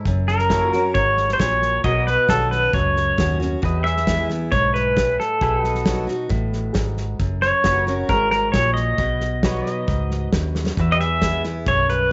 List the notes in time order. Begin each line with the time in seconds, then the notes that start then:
0.05 F#1 F#2, kick, snare
0.28 A#4, snare
0.39 snare
0.50 F#3 A#3 C#4 E4 F#4 A4 C#5, kick, snare, hi-hat pedal
0.72 C#4 F#4 A#4, snare
0.94 G#1 G#2 C#5, kick, snare
1.17 snare
1.29 snare
1.33 C5
1.39 A#1 A#2 C#5, kick, snare, hi-hat pedal
1.62 snare
1.84 B1 B2 F#4 A#4 C#5 D#5, kick, snare
2.06 B4, snare
2.11 D#5
2.28 B1 B2 D#3 C#4 F#4 A4, kick, snare, hi-hat pedal
2.51 B4, snare
2.73 C#2 F#2 C#5, kick, snare
2.96 snare
3.17 D#2 B2 D#3 C#4 F#4, kick, snare, hi-hat pedal
3.40 C#4 F#4, snare
3.62 E2 F#4 B4 D#5, kick, snare
3.84 E5, snare
3.88 G#4
3.97 snare
4.07 E3 G#3 B3 E4, kick, snare, hi-hat pedal
4.29 B3 E4, snare
4.52 B1 G#2 C#5, kick, snare
4.74 B4, snare
4.96 A2, kick, snare, hi-hat pedal
5.20 A4, snare
5.41 B1 B2 G#4 B4 E5, kick, snare
5.64 F#4 D#5, snare
5.75 snare
5.85 F#3 B3 D#4 F#4, kick, snare, hi-hat pedal
6.07 D#4 F#4, snare
6.29 A1 A2, kick, snare
6.53 snare
6.74 G#1 G#2, kick, snare, hi-hat pedal
6.97 snare
7.19 F#1 F#2, kick, snare
7.42 C#5, snare
7.64 F#1 F#3 A#3 C#4 F#4 B4 C#5, kick, snare, hi-hat pedal
7.87 C#4 F#4 A#4, snare
8.09 G#1 G#2 A#4, kick, snare
8.31 A#4, snare
8.52 A#1 A#2 C#5, kick, snare, hi-hat pedal
8.74 D#5, snare
8.98 B1 B2, kick, snare
9.20 snare
9.43 F#3 B3 D#4 F#4 B4 C#5, kick, snare, hi-hat pedal
9.66 snare
9.72 D#5
9.88 C#2 G#2, kick, snare
10.11 snare
10.33 D#2 F#2, kick, snare, hi-hat pedal
10.55 snare
10.66 snare
10.77 E2 F#4 B4 E5, kick, snare
10.92 D#5
11.00 E5, snare
11.05 G#4
11.21 E3 G#3 B3 E4, kick, snare, hi-hat pedal
11.44 B3 E4, snare
11.66 B1 F#2 C#5, kick, snare
11.89 B4, snare